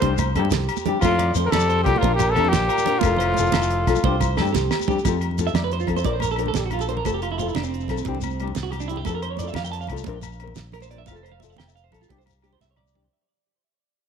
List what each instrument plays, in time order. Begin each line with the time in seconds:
Already playing: tenor saxophone F3, trumpet C5
0.02 fingered electric bass C2, nylon-string guitar G3 C4 D4 G4, clean electric guitar C5, kick, closed hi-hat, muted conga
0.18 closed hi-hat, high conga, low conga, low agogo, shekere
0.35 fingered electric bass G2, nylon-string guitar G3 C4 D4 G4, clean electric guitar A4, closed hi-hat, low agogo
0.45 high conga
0.51 fingered electric bass C2, clean electric guitar G4, snare, closed hi-hat, muted conga, low conga, shekere
0.69 closed hi-hat, low agogo
0.76 high conga, shekere
0.86 nylon-string guitar G3 C4 D4 G4, clean electric guitar G4, closed hi-hat, low conga
1.01 fingered electric bass F2, tenor saxophone A2, nylon-string guitar F3 C4 F4, trumpet F4, clean electric guitar C5, kick, closed hi-hat, muted conga, high conga, low agogo, shekere
1.05 nylon-string guitar A4
1.19 clean electric guitar D5, closed hi-hat, low conga, low agogo
1.35 fingered electric bass F2, nylon-string guitar F3 C4 F4, clean electric guitar C5, closed hi-hat, high conga, shekere
1.39 nylon-string guitar A4
1.45 tenor saxophone D3, trumpet A#4
1.51 fingered electric bass F2, tenor saxophone C3, trumpet A4, clean electric guitar D5, snare, closed hi-hat, muted conga, low conga, low agogo
1.60 shekere
1.69 clean electric guitar C5, closed hi-hat, shekere
1.79 low conga
1.83 fingered electric bass C2, tenor saxophone A#2, nylon-string guitar F3, trumpet G4, kick, closed hi-hat, low conga, low agogo
1.88 nylon-string guitar F4 A4
1.96 trumpet F4, high conga
2.01 fingered electric bass A#1, tenor saxophone A#2, nylon-string guitar F3 C4 D4 A#4, clean electric guitar A#4, kick, closed hi-hat, muted conga
2.14 tenor saxophone A#2, trumpet G4
2.19 closed hi-hat, high conga, low conga, low agogo, shekere
2.31 tenor saxophone C3, trumpet A4
2.35 fingered electric bass F2, nylon-string guitar F3 C4 D4 A#4, clean electric guitar A#4, closed hi-hat, low agogo
2.45 tenor saxophone A#2, high conga
2.49 fingered electric bass A#1, trumpet G4, clean electric guitar C5, muted conga, low conga
2.53 snare, closed hi-hat, shekere
2.69 clean electric guitar A#4, closed hi-hat, low agogo
2.78 high conga, shekere
2.85 nylon-string guitar C4 D4 A#4, clean electric guitar A#4, closed hi-hat, low conga
2.93 low conga
2.99 fingered electric bass F1, tenor saxophone A2, trumpet F4, kick, closed hi-hat, muted conga, high conga, low agogo, shekere
3.04 nylon-string guitar F3 C4 F4 A4
3.17 clean electric guitar C5, closed hi-hat, low conga
3.21 low agogo
3.34 fingered electric bass F1, nylon-string guitar F3, closed hi-hat, high conga, shekere
3.38 nylon-string guitar C4 F4 A4
3.44 low conga, shekere
3.52 fingered electric bass F1, clean electric guitar A4, snare, closed hi-hat, muted conga, low conga, low agogo, shekere
3.61 high conga, shekere
3.70 closed hi-hat
3.86 fingered electric bass B1, nylon-string guitar F3 C4 F4 A4, kick, snare, closed hi-hat, low conga, low agogo, shekere
3.95 high conga, shekere
4.04 fingered electric bass C2, nylon-string guitar G3 C4 D4 G4, clean electric guitar C5, kick, muted conga
4.21 kick, high conga, low conga, low agogo, shekere
4.29 low conga
4.37 fingered electric bass G2, nylon-string guitar G3 C4 D4, clean electric guitar A4, snare, low agogo
4.42 nylon-string guitar G4, high conga
4.47 shekere
4.53 fingered electric bass C2, clean electric guitar G4, snare, muted conga, low conga, shekere
4.71 snare, low agogo, shekere
4.80 high conga, shekere
4.88 nylon-string guitar G3 C4 D4 G4, clean electric guitar G4, floor tom, low conga, shekere
4.99 shekere
5.05 fingered electric bass F2, nylon-string guitar F3 C4 F4 A4, kick, closed hi-hat, muted conga, high conga, low conga, low agogo, shekere
5.21 closed hi-hat, low conga, low agogo
5.31 low conga
5.38 nylon-string guitar F3 C4 F4 A4, closed hi-hat, high conga, low conga, shekere
5.47 clean electric guitar E5, shekere
5.54 fingered electric bass F2, clean electric guitar D5, snare, closed hi-hat, muted conga, low conga, low agogo
5.62 clean electric guitar B4, high conga
5.72 clean electric guitar C5, closed hi-hat
5.78 clean electric guitar F4, low conga, shekere
5.87 fingered electric bass F2, nylon-string guitar F3 C4 F4 A4, kick, closed hi-hat, low conga, low agogo
5.96 clean electric guitar C5, high conga, low conga, shekere
6.03 fingered electric bass A#1, nylon-string guitar F3 C4 A#4, clean electric guitar D5, muted nylon-string guitar stroke, kick, closed hi-hat, muted conga
6.13 clean electric guitar C5
6.20 clean electric guitar A#4, closed hi-hat, high conga, low agogo, shekere
6.31 clean electric guitar A4, shekere
6.36 nylon-string guitar F3 C4 D4 A#4, muted clean electric guitar stroke, closed hi-hat, low agogo
6.46 clean electric guitar A4, high conga, low conga
6.54 fingered electric bass A#1, clean electric guitar G4, snare, closed hi-hat, muted conga, shekere
6.62 clean electric guitar F#4, low conga
6.71 clean electric guitar F4, closed hi-hat, low conga, low agogo
6.79 clean electric guitar A4, high conga, shekere
6.88 nylon-string guitar F3 C4 D4 A#4, clean electric guitar C5, closed hi-hat
6.97 clean electric guitar A#4, low conga
7.04 fingered electric bass F1, nylon-string guitar F3 C4 F4 A4, clean electric guitar A4, kick, closed hi-hat, muted conga, high conga, low conga, low agogo, shekere
7.14 clean electric guitar G4
7.22 clean electric guitar F4, closed hi-hat, low conga, low agogo
7.31 clean electric guitar E4, low conga
7.38 nylon-string guitar F3 C4 F4 A4, clean electric guitar F4, closed hi-hat, high conga, low conga, shekere
7.47 clean electric guitar E4, shekere
7.55 fingered electric bass F1, clean electric guitar D4, snare, closed hi-hat, muted conga, low conga, low agogo
7.63 clean electric guitar C4, high conga, shekere
7.74 closed hi-hat
7.80 low conga, shekere
7.88 fingered electric bass B1, nylon-string guitar C4 A4, kick, snare, closed hi-hat, low conga, low agogo
7.97 high conga, low conga, shekere
8.05 fingered electric bass C2, nylon-string guitar G3 C4 D4 G4, kick, closed hi-hat, muted conga
8.15 low conga
8.21 closed hi-hat, high conga, low agogo, shekere
8.30 shekere
8.40 nylon-string guitar G3 C4 G4, closed hi-hat, low agogo
8.44 nylon-string guitar D4, high conga, low conga
8.55 fingered electric bass C2, snare, closed hi-hat, muted conga, shekere
8.63 clean electric guitar F#4, low conga
8.71 clean electric guitar G4, closed hi-hat, low conga, low agogo
8.79 clean electric guitar D4, high conga, shekere
8.88 nylon-string guitar G3 C4 D4 G4, clean electric guitar E4, closed hi-hat
8.96 clean electric guitar G4, low conga
9.05 fingered electric bass F2, nylon-string guitar F3, clean electric guitar A4, muted nylon-string guitar stroke, kick, closed hi-hat, muted conga, high conga, low conga, low agogo, shekere
9.10 nylon-string guitar A4
9.15 clean electric guitar A#4
9.22 clean electric guitar C5, closed hi-hat, low agogo
9.29 clean electric guitar C#5, low conga
9.37 nylon-string guitar F3, clean electric guitar D5, closed hi-hat, high conga, low conga, shekere
9.42 nylon-string guitar C4 F4 A4
9.48 clean electric guitar E5, shekere
9.54 fingered electric bass F2, clean electric guitar F5, snare, closed hi-hat, muted conga, low conga, low agogo
9.62 clean electric guitar G5, high conga, shekere
9.72 clean electric guitar A5, closed hi-hat, shekere
9.79 clean electric guitar F5, low conga, shekere
9.87 fingered electric bass C2, nylon-string guitar F3, kick, closed hi-hat, low conga, low agogo
9.91 nylon-string guitar C4 F4 A4
9.96 high conga, low conga, shekere
10.04 fingered electric bass A#1, nylon-string guitar F3 C4 D4, kick, closed hi-hat, muted conga
10.08 nylon-string guitar A#4
10.13 low conga
10.21 closed hi-hat, high conga, low agogo, shekere
10.32 shekere
10.40 nylon-string guitar C4 A#4, closed hi-hat, low agogo
10.47 high conga, low conga
10.56 fingered electric bass A#1, snare, closed hi-hat, muted conga, shekere
10.72 clean electric guitar A#4, closed hi-hat, low conga, low agogo
10.80 clean electric guitar C5, high conga, shekere
10.90 nylon-string guitar F3 C4 D4 A#4, clean electric guitar D5, closed hi-hat
10.97 clean electric guitar E5, low conga
11.06 nylon-string guitar F3, clean electric guitar F5, kick, closed hi-hat, muted conga, high conga, low conga, low agogo, shekere
11.10 nylon-string guitar C4 F4 A4
11.16 clean electric guitar A4, shekere
11.23 clean electric guitar C5, closed hi-hat, low agogo
11.31 clean electric guitar F5, low conga
11.40 nylon-string guitar F3 C4 F4, clean electric guitar E5, closed hi-hat, high conga, shekere
11.44 nylon-string guitar A4
11.50 clean electric guitar F5, shekere
11.56 fingered electric bass F1, clean electric guitar G5, snare, closed hi-hat, muted conga, low conga, low agogo, shekere
11.65 clean electric guitar E5, high conga, shekere
11.76 clean electric guitar F5, closed hi-hat, shekere
11.84 clean electric guitar C5
11.92 fingered electric bass A#1, nylon-string guitar F3 C4 F4 A4, clean electric guitar A4, kick, closed hi-hat, low conga, low agogo, shekere
12.01 clean electric guitar F4, high conga, shekere
12.09 fingered electric bass C2, nylon-string guitar G3 C4 D4 G4, clean electric guitar G4, kick, closed hi-hat, muted conga
12.17 clean electric guitar C5, low conga, shekere
12.26 closed hi-hat, high conga, low conga, low agogo, shekere
12.42 nylon-string guitar G3 C4 D4 G4, clean electric guitar G4, closed hi-hat, low agogo
12.47 shekere
12.52 clean electric guitar C5, high conga, low conga
12.60 fingered electric bass C2, clean electric guitar E5, snare, muted conga, shekere
12.71 clean electric guitar C#5
12.76 clean electric guitar D5, mid tom, low conga, low agogo
12.86 high conga, shekere
12.94 nylon-string guitar G3 C4 D4 G4, floor tom
13.04 low conga